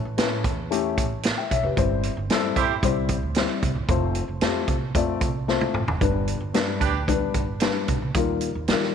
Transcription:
0.05 upright bass A1
0.18 upright bass A2, upright piano A3 C#4 E4 B4, snare, closed hi-hat
0.44 upright bass E2, kick, closed hi-hat
0.71 upright piano A3 C#4 E4 G4, closed hi-hat
0.97 upright bass A1, kick, closed hi-hat
1.23 snare, closed hi-hat
1.38 upright piano E5 G5
1.51 upright bass B1, upright piano C#5 E5, kick, closed hi-hat
1.63 upright bass F1, upright piano G4 B4
1.77 upright bass G1, upright piano G3 C4 E4 C5, kick, closed hi-hat
2.03 closed hi-hat
2.17 upright bass G1
2.30 upright bass G2, upright piano G3 C4 E4 A4, snare, closed hi-hat
2.56 upright bass G2, horn section E4 G4 C5, kick, closed hi-hat
2.83 upright bass C2, upright piano G3 C4 E4 C5, kick, closed hi-hat
3.08 kick, closed hi-hat
3.23 upright bass D2
3.35 upright piano G3 C4 E4 C5, snare, closed hi-hat
3.62 upright bass C2, kick, closed hi-hat
3.75 upright bass G1
3.89 upright bass F1, upright piano A3 C4 F4 C5, kick, closed hi-hat
4.15 closed hi-hat
4.28 upright bass F1
4.41 upright bass F2, upright piano A3 C4 F4 G4, snare, closed hi-hat
4.68 upright bass C2, kick, closed hi-hat
4.95 upright bass F2, upright piano A3 C4 F4 D5, kick, closed hi-hat
5.21 upright bass C2, kick, closed hi-hat
5.48 upright piano A3 C4 F4 C5, snare
5.61 high tom
5.74 upright bass A1, mid tom
5.87 upright bass F1, floor tom
6.01 upright bass G1, upright piano G3 B3 D4 B4, kick, closed hi-hat
6.28 closed hi-hat
6.40 upright bass G1
6.54 upright bass G2, upright piano G3 B3 D4 B4, snare, closed hi-hat
6.81 upright bass D2, horn section D4 G4 B4, kick, closed hi-hat
7.08 upright piano G3 B3 D4 B4, kick, closed hi-hat
7.34 upright bass G1, kick, closed hi-hat
7.60 upright piano G3 B3 D4 B4, snare, closed hi-hat
7.88 upright bass B1, kick, closed hi-hat
8.02 upright bass C2
8.14 upright bass D#2, upright piano G3 D#4 F4 A#4, kick, closed hi-hat
8.41 closed hi-hat
8.55 upright bass D#2
8.68 upright bass D#3, upright piano G3 D#4 F4 A#4, snare, closed hi-hat
8.83 snare

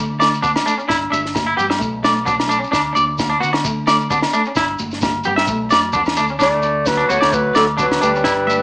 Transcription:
Already playing: fretless electric bass D3, clean electric guitar A3
0.19 clean electric guitar A3 D5, snare, muted conga, low agogo, shekere
0.34 shekere
0.42 clean electric guitar B3 D4, kick, high conga, shekere
0.56 snare, low agogo, shekere
0.66 clean electric guitar A3 D4, shekere
0.78 clean electric guitar C#4, shekere
0.88 fretless electric bass G1, clean electric guitar D4 E4, kick, snare, muted conga, low agogo, shekere
1.10 fretless electric bass G1, clean electric guitar D4 E5, high conga, shekere
1.26 snare
1.35 kick, snare, muted conga, high conga, low agogo, shekere
1.47 clean electric guitar E4
1.57 fretless electric bass G2, clean electric guitar B3 G4, low conga, shekere
1.70 muted clean electric guitar stroke, snare, low agogo
1.79 fretless electric bass B1, clean electric guitar A3, kick, muted conga, shekere
2.03 clean electric guitar A3 D5, snare, muted conga, high conga, low agogo, shekere
2.16 shekere
2.25 clean electric guitar B3 D4, kick, high conga, shekere
2.40 snare, low agogo
2.48 clean electric guitar A3 D4, shekere
2.59 clean electric guitar C#4
2.64 shekere
2.71 fretless electric bass D2, clean electric guitar D4, kick, snare, muted conga, low agogo, shekere
2.93 clean electric guitar D4 D5, high conga, shekere
2.97 fretless electric bass D2
3.19 kick, snare, muted conga, high conga, low agogo, shekere
3.30 clean electric guitar D4
3.40 fretless electric bass D3, clean electric guitar B3 F#4, shekere
3.53 muted clean electric guitar stroke, snare, low agogo
3.64 clean electric guitar A3, kick, muted conga, shekere
3.87 clean electric guitar A3 D5, snare, muted conga, low agogo, shekere
4.00 shekere
4.10 clean electric guitar B3 D4, kick, high conga, shekere
4.22 snare, low agogo, shekere
4.33 clean electric guitar A3 D4, shekere
4.45 clean electric guitar C#4, shekere
4.55 fretless electric bass G1, clean electric guitar D4 E4, kick, snare, muted conga, low agogo, shekere
4.79 fretless electric bass G1, high conga, shekere
4.91 snare, shekere
5.01 kick, snare, muted conga, high conga, low agogo, shekere
5.24 fretless electric bass G2, clean electric guitar B3 G4, low conga, shekere
5.36 clean electric guitar E5, snare, low agogo
5.47 fretless electric bass B1, clean electric guitar A3, kick, muted conga, shekere
5.70 fretless electric bass F#2, clean electric guitar D5, snare, muted conga, high conga, low agogo, shekere
5.81 shekere
5.93 fretless electric bass E2, clean electric guitar B3 D4, kick, high conga, shekere
6.05 snare, low agogo, shekere
6.16 fretless electric bass D2, clean electric guitar A3 D4, shekere
6.27 clean electric guitar C#4, shekere
6.39 fretless electric bass D2, alto saxophone A3, clean electric guitar D4, clarinet D5, kick, snare, muted conga, low agogo, shekere
6.63 clean electric guitar D4, shekere
6.86 alto saxophone F#3, clarinet B4, kick, snare, high conga, low agogo, shekere
6.97 clean electric guitar D4, shekere
7.09 fretless electric bass D2, alto saxophone A3, clean electric guitar B3 F#4, clarinet C#5, muted conga, high conga, shekere
7.21 fretless electric bass D2, clean electric guitar D5, snare, low agogo
7.32 alto saxophone F#3, clean electric guitar A3, clarinet B4, kick, muted conga, shekere
7.55 fretless electric bass D2, alto saxophone F#3, clean electric guitar A3 D5, clarinet A4, snare, low agogo, shekere
7.77 alto saxophone F#3, clean electric guitar B3 D4, clarinet B4, kick, high conga, shekere
7.91 fretless electric bass D2, snare, low agogo
8.01 fretless electric bass D2, alto saxophone G3, clean electric guitar A3 D4, clarinet B4, shekere
8.15 clean electric guitar C#4, shekere
8.24 fretless electric bass G1, clean electric guitar D4 E4, kick, snare, muted conga, low agogo, shekere
8.47 clean electric guitar D4 E5, muted conga, high conga, shekere

